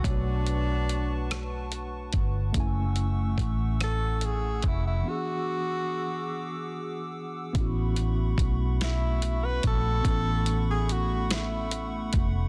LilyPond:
<<
  \new Staff \with { instrumentName = "Analog synth pad" } { \time 6/8 \key a \major \tempo 4. = 48 << { <b' fis'' cis'''>2. | <a cis'''>2. | <gis' d'''>2. | <a b''>2.~ |
<a b''>2. | } \\ { a''2. | <fis'' e'''>2.~ | <fis'' e'''>2. | <fis'' cis'''>2.~ |
<fis'' cis'''>2. | } >> }
  \new Staff \with { instrumentName = "Tenor saxophone" } { \time 6/8 \key a \major d'2 r4 | r4. a'8 gis'8 e'16 e'16 | fis'2~ fis'8 r8 | r4. e'8. b'16 a'8~ |
a'8. gis'16 fis'8 e'4 r8 | }
  \new Staff \with { instrumentName = "Tine electric piano" } { \time 6/8 \key a \major <a d' fis' cis''>2. | <a cis' e' gis''>2. | <e b d' fis' gis'>2. | <b cis' e' fis'>2. |
<b cis' e' a'>2. | }
  \new Staff \with { instrumentName = "Fingered electric bass" } { \clef bass \time 6/8 \key a \major b,,2~ b,,8 g,,8 | fis,,4 a,,4. eis,,8 | r2. | a,,4 b,,4. ais,,8 |
a,,2~ a,,8 eis,,8 | }
  \new DrumStaff \with { instrumentName = "Drums" } \drummode { \time 6/8 <hh bd>8 hh8 hh8 <hh ss>8 hh8 <hh bd>8 | <hh bd>8 hh8 <hh bd>8 <hh ss>8 hh8 <hh bd>8 | r4. r4. | <hh bd>8 hh8 <hh bd>8 <hh sn>8 hh8 <hh bd>8 |
<hh bd>8 hh8 hh8 <hh sn>8 hh8 <hh bd>8 | }
>>